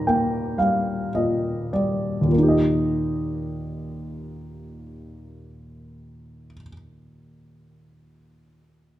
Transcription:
0, 0, Header, 1, 2, 480
1, 0, Start_track
1, 0, Key_signature, -3, "major"
1, 0, Tempo, 1077199
1, 509, Tempo, 1188119
1, 992, Time_signature, 4, 2, 24, 8
1, 1469, Tempo, 1151631
1, 2429, Tempo, 1200000
1, 3699, End_track
2, 0, Start_track
2, 0, Title_t, "Grand piano"
2, 0, Program_c, 0, 0
2, 0, Control_c, 0, 64, 127
2, 0, Note_on_c, 0, 39, 52
2, 0, Note_on_c, 0, 46, 38
2, 0, Note_on_c, 0, 51, 36
2, 0, Note_on_c, 0, 55, 42
2, 0, Note_on_c, 0, 70, 46
2, 0, Note_on_c, 0, 75, 59
2, 0, Note_on_c, 0, 82, 46
2, 30, Note_on_c, 0, 58, 37
2, 31, Note_on_c, 0, 79, 43
2, 244, Note_off_c, 0, 46, 0
2, 245, Note_off_c, 0, 79, 0
2, 254, Note_off_c, 0, 55, 0
2, 259, Note_on_c, 0, 77, 44
2, 261, Note_on_c, 0, 55, 35
2, 485, Note_off_c, 0, 75, 0
2, 492, Note_off_c, 0, 77, 0
2, 493, Note_off_c, 0, 70, 0
2, 511, Note_on_c, 0, 46, 32
2, 512, Note_on_c, 0, 75, 39
2, 733, Note_off_c, 0, 75, 0
2, 735, Note_off_c, 0, 51, 0
2, 741, Note_off_c, 0, 55, 0
2, 746, Note_on_c, 0, 74, 39
2, 747, Note_on_c, 0, 55, 32
2, 935, Note_off_c, 0, 39, 0
2, 941, Note_on_c, 0, 39, 33
2, 958, Note_off_c, 0, 46, 0
2, 964, Note_on_c, 0, 46, 31
2, 976, Note_off_c, 0, 74, 0
2, 978, Note_off_c, 0, 58, 0
2, 984, Note_on_c, 0, 58, 31
2, 985, Note_off_c, 0, 55, 0
2, 997, Control_c, 0, 64, 0
2, 999, Note_off_c, 0, 82, 0
2, 1008, Note_on_c, 0, 63, 30
2, 1029, Note_on_c, 0, 67, 31
2, 1051, Note_on_c, 0, 75, 36
2, 1080, Control_c, 0, 64, 127
2, 2684, Note_off_c, 0, 39, 0
2, 2707, Note_off_c, 0, 46, 0
2, 2726, Note_off_c, 0, 58, 0
2, 2751, Note_off_c, 0, 63, 0
2, 2771, Note_off_c, 0, 67, 0
2, 2792, Note_off_c, 0, 75, 0
2, 3699, End_track
0, 0, End_of_file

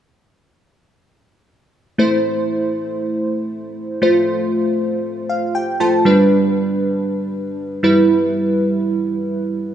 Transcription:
0, 0, Header, 1, 2, 480
1, 0, Start_track
1, 0, Key_signature, 0, "minor"
1, 0, Tempo, 508475
1, 1877, Time_signature, 4, 2, 24, 8
1, 9199, End_track
2, 0, Start_track
2, 0, Title_t, "Synth keys"
2, 0, Program_c, 0, 88
2, 1873, Note_on_c, 0, 57, 68
2, 1877, Note_on_c, 0, 64, 64
2, 1882, Note_on_c, 0, 72, 78
2, 3757, Note_off_c, 0, 57, 0
2, 3759, Note_off_c, 0, 64, 0
2, 3762, Note_off_c, 0, 72, 0
2, 3792, Note_on_c, 0, 57, 71
2, 3797, Note_on_c, 0, 65, 66
2, 3802, Note_on_c, 0, 72, 79
2, 4998, Note_on_c, 0, 77, 62
2, 5221, Note_off_c, 0, 77, 0
2, 5237, Note_on_c, 0, 79, 63
2, 5441, Note_off_c, 0, 57, 0
2, 5443, Note_off_c, 0, 65, 0
2, 5446, Note_off_c, 0, 72, 0
2, 5460, Note_off_c, 0, 79, 0
2, 5475, Note_on_c, 0, 57, 52
2, 5477, Note_on_c, 0, 65, 49
2, 5478, Note_on_c, 0, 81, 69
2, 5480, Note_on_c, 0, 72, 58
2, 5700, Note_off_c, 0, 81, 0
2, 5713, Note_on_c, 0, 55, 71
2, 5716, Note_off_c, 0, 57, 0
2, 5717, Note_off_c, 0, 65, 0
2, 5717, Note_on_c, 0, 62, 69
2, 5718, Note_off_c, 0, 72, 0
2, 5722, Note_on_c, 0, 71, 80
2, 7361, Note_off_c, 0, 55, 0
2, 7363, Note_off_c, 0, 62, 0
2, 7366, Note_off_c, 0, 71, 0
2, 7392, Note_on_c, 0, 55, 71
2, 7397, Note_on_c, 0, 64, 63
2, 7402, Note_on_c, 0, 71, 80
2, 9199, Note_off_c, 0, 55, 0
2, 9199, Note_off_c, 0, 64, 0
2, 9199, Note_off_c, 0, 71, 0
2, 9199, End_track
0, 0, End_of_file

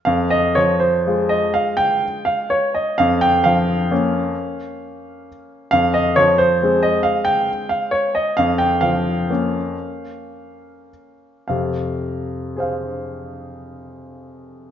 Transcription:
0, 0, Header, 1, 2, 480
1, 0, Start_track
1, 0, Key_signature, -4, "minor"
1, 0, Tempo, 489796
1, 56, Time_signature, 3, 2, 24, 8
1, 2936, Tempo, 455581
1, 5816, Tempo, 437318
1, 7736, Tempo, 453858
1, 9656, Tempo, 502513
1, 10616, Tempo, 597015
1, 11576, Tempo, 546448
1, 14403, End_track
2, 0, Start_track
2, 0, Title_t, "Grand piano"
2, 0, Program_c, 0, 0
2, 49, Note_on_c, 0, 77, 71
2, 64, Note_on_c, 0, 41, 53
2, 255, Control_c, 0, 64, 127
2, 296, Note_off_c, 0, 77, 0
2, 299, Note_on_c, 0, 75, 67
2, 541, Note_on_c, 0, 73, 70
2, 546, Note_off_c, 0, 75, 0
2, 558, Control_c, 0, 64, 0
2, 559, Note_on_c, 0, 53, 43
2, 781, Note_on_c, 0, 72, 54
2, 790, Note_off_c, 0, 73, 0
2, 1045, Note_on_c, 0, 56, 33
2, 1051, Note_on_c, 0, 65, 38
2, 1267, Note_on_c, 0, 75, 60
2, 1278, Note_off_c, 0, 72, 0
2, 1337, Note_off_c, 0, 53, 0
2, 1480, Note_off_c, 0, 41, 0
2, 1507, Note_off_c, 0, 75, 0
2, 1507, Note_on_c, 0, 77, 65
2, 1726, Control_c, 0, 64, 127
2, 1732, Note_on_c, 0, 79, 72
2, 1741, Note_off_c, 0, 77, 0
2, 1996, Control_c, 0, 64, 0
2, 2205, Note_on_c, 0, 77, 66
2, 2216, Note_off_c, 0, 79, 0
2, 2450, Note_on_c, 0, 73, 63
2, 2460, Note_off_c, 0, 77, 0
2, 2690, Note_on_c, 0, 75, 55
2, 2700, Note_off_c, 0, 73, 0
2, 2899, Note_off_c, 0, 56, 0
2, 2902, Note_off_c, 0, 65, 0
2, 2920, Note_on_c, 0, 77, 78
2, 2926, Note_off_c, 0, 75, 0
2, 2935, Note_on_c, 0, 41, 51
2, 3164, Note_on_c, 0, 79, 72
2, 3165, Note_off_c, 0, 77, 0
2, 3165, Control_c, 0, 64, 127
2, 3403, Note_on_c, 0, 77, 74
2, 3410, Note_off_c, 0, 79, 0
2, 3420, Note_on_c, 0, 53, 41
2, 3902, Note_on_c, 0, 58, 37
2, 3904, Note_on_c, 0, 61, 41
2, 3912, Control_c, 0, 64, 0
2, 4196, Note_off_c, 0, 53, 0
2, 4341, Note_off_c, 0, 41, 0
2, 4603, Control_c, 0, 64, 127
2, 5345, Control_c, 0, 64, 0
2, 5772, Note_off_c, 0, 58, 0
2, 5773, Note_off_c, 0, 61, 0
2, 5780, Note_off_c, 0, 77, 0
2, 5796, Note_on_c, 0, 77, 86
2, 5813, Note_on_c, 0, 41, 50
2, 6004, Control_c, 0, 64, 127
2, 6045, Note_on_c, 0, 75, 64
2, 6048, Note_off_c, 0, 77, 0
2, 6288, Note_on_c, 0, 73, 76
2, 6293, Note_off_c, 0, 75, 0
2, 6302, Note_on_c, 0, 53, 45
2, 6315, Control_c, 0, 64, 0
2, 6533, Note_on_c, 0, 72, 65
2, 6539, Note_off_c, 0, 73, 0
2, 6796, Note_on_c, 0, 56, 38
2, 6804, Note_on_c, 0, 60, 39
2, 7020, Note_on_c, 0, 75, 63
2, 7027, Note_off_c, 0, 72, 0
2, 7081, Note_off_c, 0, 53, 0
2, 7222, Note_off_c, 0, 41, 0
2, 7244, Note_on_c, 0, 77, 64
2, 7259, Note_off_c, 0, 75, 0
2, 7461, Control_c, 0, 64, 127
2, 7481, Note_on_c, 0, 79, 67
2, 7486, Note_off_c, 0, 77, 0
2, 7749, Control_c, 0, 64, 0
2, 7961, Note_off_c, 0, 79, 0
2, 7963, Note_on_c, 0, 77, 58
2, 8195, Note_on_c, 0, 73, 66
2, 8205, Note_off_c, 0, 77, 0
2, 8441, Note_off_c, 0, 73, 0
2, 8443, Note_on_c, 0, 75, 56
2, 8642, Note_off_c, 0, 56, 0
2, 8646, Note_off_c, 0, 60, 0
2, 8676, Note_on_c, 0, 77, 70
2, 8680, Note_off_c, 0, 75, 0
2, 8694, Note_on_c, 0, 41, 46
2, 8885, Control_c, 0, 64, 127
2, 8905, Note_on_c, 0, 79, 62
2, 8912, Note_off_c, 0, 77, 0
2, 9143, Note_on_c, 0, 77, 66
2, 9146, Note_off_c, 0, 79, 0
2, 9158, Note_on_c, 0, 53, 42
2, 9661, Note_on_c, 0, 58, 32
2, 9666, Note_on_c, 0, 61, 34
2, 9667, Control_c, 0, 64, 0
2, 9942, Note_off_c, 0, 53, 0
2, 10092, Note_off_c, 0, 41, 0
2, 10360, Control_c, 0, 64, 127
2, 11095, Control_c, 0, 64, 0
2, 11545, Note_off_c, 0, 58, 0
2, 11547, Note_off_c, 0, 61, 0
2, 11550, Note_off_c, 0, 77, 0
2, 11562, Note_on_c, 0, 77, 38
2, 11573, Note_on_c, 0, 41, 33
2, 11576, Note_on_c, 0, 48, 32
2, 11767, Control_c, 0, 64, 127
2, 12516, Note_on_c, 0, 68, 26
2, 12532, Note_on_c, 0, 72, 26
2, 12536, Note_off_c, 0, 77, 0
2, 12549, Note_on_c, 0, 77, 26
2, 14403, Note_off_c, 0, 41, 0
2, 14403, Note_off_c, 0, 48, 0
2, 14403, Note_off_c, 0, 68, 0
2, 14403, Note_off_c, 0, 72, 0
2, 14403, Note_off_c, 0, 77, 0
2, 14403, End_track
0, 0, End_of_file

